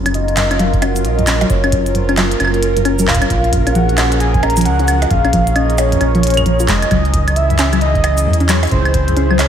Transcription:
Already playing: F#1 F#3 C#4 F4 A#4
0.06 C#4, closed hi-hat, claves
0.14 D#5, closed hi-hat
0.28 closed hi-hat
0.37 F#2, clap, closed hi-hat, percussion blips, cabasa
0.51 C#4, closed hi-hat, claves
0.59 F#3 F5, closed hi-hat
0.73 kick, closed hi-hat
0.82 C#4 F#5, closed hi-hat, percussion blips, claves
0.96 closed hi-hat, cabasa
1.05 A#1 D#5, closed hi-hat
1.19 F#2, closed hi-hat
1.27 C#4, clap, closed hi-hat, cabasa, claves
1.41 F#3, closed hi-hat, percussion blips
1.50 F#1 C#5, kick, closed hi-hat
1.64 C#4, closed hi-hat, claves
1.72 kick, closed hi-hat
1.86 closed hi-hat
1.95 F#2 C5, closed hi-hat
2.09 C#4, closed hi-hat, claves
2.17 F#3 A#4, clap, closed hi-hat, percussion blips
2.31 closed hi-hat
2.40 F#1 C#4, closed hi-hat, claves
2.45 claves
2.48 claves
2.54 closed hi-hat
2.63 closed hi-hat
2.77 F#2, closed hi-hat
2.85 C#4, closed hi-hat, claves
2.99 F#3, closed hi-hat, cabasa
3.08 F5, kick, clap
3.10 kick
3.13 kick, closed hi-hat
3.16 kick
3.19 C#4, kick, closed hi-hat, claves
3.30 A#1 F3 G#4, kick, closed hi-hat
3.44 closed hi-hat
3.53 F2, kick, closed hi-hat
3.67 C#4, closed hi-hat, claves
3.75 F3 F#5, closed hi-hat
3.89 closed hi-hat
3.98 C#4, clap, closed hi-hat, percussion blips, cabasa, claves
4.12 closed hi-hat
4.20 G#5, closed hi-hat
4.34 F2, kick, closed hi-hat
4.43 C#4 A#5, closed hi-hat, percussion blips, claves
4.50 closed hi-hat
4.57 F3, closed hi-hat, cabasa
4.61 closed hi-hat
4.65 C#2 F#5, closed hi-hat
4.79 C#4, closed hi-hat
4.88 closed hi-hat, cabasa, claves
5.02 closed hi-hat, percussion blips
5.10 A#1 F2 F5, kick, closed hi-hat
5.25 C#4, closed hi-hat, claves
5.33 F3, kick, closed hi-hat
5.47 closed hi-hat
5.56 C#4 D#5, closed hi-hat, claves
5.70 closed hi-hat
5.78 C#5, closed hi-hat, percussion blips, cabasa
5.92 F2, closed hi-hat
6.01 A#1 C#4, closed hi-hat, claves
6.15 F3, closed hi-hat
6.23 closed hi-hat
6.27 closed hi-hat
6.30 closed hi-hat
6.34 F2, closed hi-hat
6.37 closed hi-hat, claves
6.46 A#1 F3, closed hi-hat
6.60 F4, closed hi-hat, cabasa
6.68 F1 G#3 D#5, kick, clap, closed hi-hat
6.82 closed hi-hat, claves
6.91 C#2 E3 F#3 E4 G#4, kick, closed hi-hat, claves
7.05 closed hi-hat
7.14 F#2, kick, closed hi-hat
7.28 closed hi-hat, claves
7.36 E5, closed hi-hat
7.50 F#2, closed hi-hat
7.59 C#4, clap, closed hi-hat, percussion blips, cabasa
7.73 F#3, closed hi-hat, claves
7.81 D#5, closed hi-hat
7.95 F#2, kick, closed hi-hat
8.04 closed hi-hat, percussion blips, claves
8.18 closed hi-hat, cabasa
8.26 E2 F#2
8.33 closed hi-hat
8.40 C#4, closed hi-hat
8.49 F#3 C#5, clap, closed hi-hat, cabasa, claves
8.63 closed hi-hat, percussion blips
8.65 closed hi-hat
8.67 closed hi-hat
8.69 C#2, kick, closed hi-hat
8.71 F#2 C5, closed hi-hat
8.85 closed hi-hat, claves
8.94 kick, closed hi-hat
9.08 F#2, closed hi-hat
9.17 C#4, closed hi-hat
9.31 F#3, claves
9.39 C#5, clap, closed hi-hat, percussion blips, cabasa

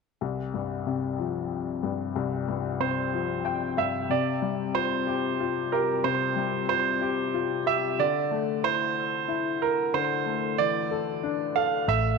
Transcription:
0.21 C2
0.54 G2
0.87 C3
1.18 F3
1.83 G2
2.16 C2
2.48 G2
2.80 C3 C5
3.13 F3
3.45 G5
3.77 G2 E5 F5
4.10 C3 D5
4.42 G3
4.75 F4 C5
5.07 G4
5.40 F4
5.72 G4 A#4
6.04 C3 C5
6.36 G3
6.69 F4 C5
7.01 G4
7.34 F4
7.66 G4 E5
7.99 D3 D5
8.31 A3
8.63 E4 C5
9.28 E4
9.62 A#4
9.94 D3 C5
10.26 A3
10.58 E3 D5
10.91 A4
11.23 D4
11.56 A4 F5
11.88 A1 A3 E5

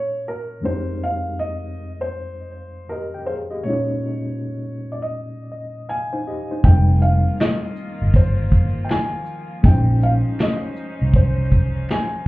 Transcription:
Already playing: A#2 G#3 C#4 D#4 F4 C#5
0.28 A#4
0.62 F2 G#3 C4 D#4 C5
0.67 G4 A#4
1.04 F5
1.39 D#5
2.01 C5
2.89 G4 A#4 D#5
3.14 A#4 G5
3.26 G#4 C5 F5
3.50 G4 D#5
3.63 A#2 G#3 C#4 C#5
3.68 D#4 F4 C#5
4.92 D5
5.02 D#5
5.52 D#5
5.89 F5 G#5
6.13 D#4 C5 G#5
6.27 G4 D#5
6.51 D#4 C5
6.63 F1 D#3 F3 G#3 A#3 C4 D#4 F4 G5, kick, closed hi-hat
6.68 G3 A4
6.76 A#4
7.02 F5, shaker
7.40 D#5, finger snap, snare, closed hi-hat
7.77 shaker
8.02 G1
8.14 C5, kick, closed hi-hat
8.52 kick, closed hi-hat, shaker
8.85 G5
8.89 G#5, finger snap, snare, closed hi-hat
9.26 shaker
9.63 A#1 G#3 C#4 D#4 C5 G5, kick, closed hi-hat
9.68 F4 C5
10.02 F5, shaker
10.39 D#5, finger snap, snare, closed hi-hat
10.76 shaker
11.02 C2
11.14 C5, kick, closed hi-hat
11.52 kick, shaker
11.89 G#5, finger snap, snare, closed hi-hat

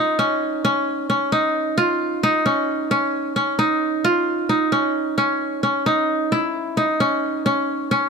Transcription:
Already playing: C#4 D#4 F4
0.19 C#4
0.65 C#4
1.10 C#4
1.32 D#4
1.78 F4
2.23 D#4
2.46 C#4
2.91 C#4
3.36 C#4
3.59 D#4
4.04 F4
4.49 D#4
4.72 C#4
5.18 C#4
5.63 C#4
5.86 D#4
6.32 E4
6.77 D#4
7.00 C#4
7.46 C#4
7.91 C#4

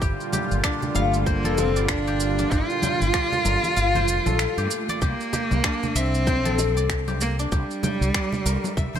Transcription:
Already playing: D4 A#4 C5 E5
0.01 G1 A#2 D3 G3 F4 G4, kick, shaker
0.20 shaker
0.33 G4, high bongo, low conga, shaker
0.51 G1, shaker
0.64 D4, finger snap, kick, shaker
0.82 high bongo, low conga, shaker
0.95 G1 A3 F5, low conga, shaker
1.14 shaker
1.26 A#3 C5, kick, shaker
1.44 F1 A4, high conga, shaker
1.58 C4, high bongo, high conga, shaker
1.76 G1 D5, shaker
1.89 D4, finger snap, kick, shaker
2.07 G4, shaker
2.20 shaker
2.39 D4, high conga, shaker
2.51 G1 F4 G4, kick, shaker
2.70 shaker
2.82 G5, high bongo, low conga, shaker
3.02 G1, shaker
3.14 D5, finger snap, kick, shaker
3.32 high bongo, low conga, shaker
3.45 G1 A#4, low conga, shaker
3.64 high bongo, high conga, shaker
3.76 G1 F5, shaker
3.95 C5, high conga, low conga, shaker
4.08 F1, shaker
4.26 A#1 A4, high conga, low conga, shaker
4.39 finger snap, shaker
4.58 G2 G4, high conga, shaker
4.65 A#3
4.71 A3, shaker
4.89 D5, high conga, shaker
5.02 C2 A#3 G4, kick, shaker
5.20 shaker
5.33 G4, high bongo, low conga, shaker
5.51 C2, low conga, shaker
5.64 D4, finger snap, kick, shaker
5.83 high bongo, low conga, shaker
5.95 C2 C4 E5, shaker
6.14 shaker
6.27 C5, kick, low conga, shaker
6.45 A#1 A4, high conga, shaker
6.58 high bongo, high conga, shaker
6.77 C2 D5, shaker
6.90 finger snap, kick, shaker
7.08 G4, high conga, low conga, shaker
7.21 A#3, shaker
7.39 D4, shaker
7.52 C2 G3 G4, kick, shaker
7.71 shaker
7.83 G5, high bongo, low conga, shaker
8.01 C2, shaker
8.14 D5, finger snap, kick, shaker
8.32 high bongo, low conga, shaker
8.46 C2 A#4, shaker
8.64 high bongo, low conga, shaker
8.77 C2 E5, kick, shaker
8.95 C5, high conga, low conga, shaker

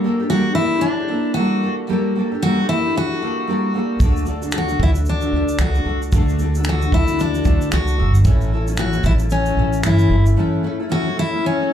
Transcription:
0.04 A#3 D4 G4 A4
0.20 D4 G4 A4
0.30 G3 A#3 D4 F#4 G4 A4
0.47 D4 G4 A4
0.55 A#3 D4 E4 G4
0.59 A4
0.74 D4 G4 A4
0.81 D4
1.00 D4 G4 A4
1.09 A#3 D4 G4 A4
1.34 G3 A#3 D4 F#4 G4 A4
1.63 A#3 D4 G4 A4
1.89 G3 A#3 D4 G4 A4
2.16 A#3 D4 G4 A4
2.32 D4 G4 A4
2.42 G3 A#3 D4 F#4 G4 A4
2.59 D4 G4 A4
2.69 A#3 D4 E4 G4 A4
2.85 D4 G4 A4
2.97 F#4
3.12 D4 G4 A4
3.21 A#3 D4 G4 A4
3.48 G3 A#3 D4 G4 A4
3.74 A#3 D4 G4 A4
4.00 D2 D3 A3 D4 F#4 A4, kick, shaker
4.17 shaker
4.26 A3 D4 F#4 A4, shaker
4.42 D4 F#4 A4, shaker
4.51 D3 A3 D4 F#4 A4, finger snap, shaker
4.58 F#4
4.67 D4 F#4 A4, shaker
4.80 D2 A3 D4 E4 F#4 A4, kick
4.93 D4 F#4 A4, shaker
5.05 D4, shaker
5.21 D4 F#4 A4, shaker
5.32 D2 A3 D4 F#4 A4
5.48 shaker
5.58 C#2 D3 A3 D4 F#4 A4, finger snap, shaker
5.74 D4 F#4 A4, shaker
5.85 C#2 A3 D4 F#4 A4
6.02 shaker
6.12 D2 D3 A3 D4 F#4 A4, kick, shaker
6.29 shaker
6.39 A3 D4 F#4 A4, shaker
6.55 F#4 A4, shaker
6.59 D4
6.64 D3 A3 D4 F#4 A4, finger snap, shaker
6.69 F#4
6.81 D4 F#4 A4, shaker
6.92 D2 A3 D4 E4 F#4 A4, kick
7.07 D4 F#4 A4, shaker
7.19 D4, shaker
7.34 D4 F#4 A4, shaker
7.44 D2 A3 D4 F#4 A4, kick, shaker
7.61 shaker
7.71 C#2 D3 A3 D4 F#4 A4, finger snap, shaker
7.88 shaker
7.97 G1 A3 D4 F#4 A4
8.15 shaker
8.25 A1 A2 E3 A3 C#4 E4 A4, kick, shaker
8.41 shaker
8.52 A3 C#4 E4 A4
8.67 A3 C#4 E4 A4, shaker
8.77 A2 E3 A3 C#4 E4 F#4 A4, finger snap, shaker
8.93 C#4 E4 A4, shaker
8.97 A3
9.04 A1 A3 C#4 E4, kick, shaker
9.08 A4
9.19 E4 A4, shaker
9.23 A3 C#4
9.30 C#4, shaker
9.46 A3 C#4 E4 A4, shaker
9.57 A1 A3 C#4 E4 A4
9.73 shaker
9.83 G1 A2 E3 A3 C#4 E4 A4, finger snap, shaker
9.99 shaker
10.09 G1 A3 C#4 E4 A4
10.26 shaker
10.36 A2 E3 A3 C#4 E4 A4
10.63 A3 C#4 E4 A4
10.80 A3 C#4 E4 A4
10.89 A2 E3 A3 C#4 E4 F#4 A4
11.06 A3 C#4 E4 A4
11.17 A3 C#4 E4 A4
11.33 A3 C#4 E4 A4
11.46 C#4
11.60 A3 C#4 E4 A4

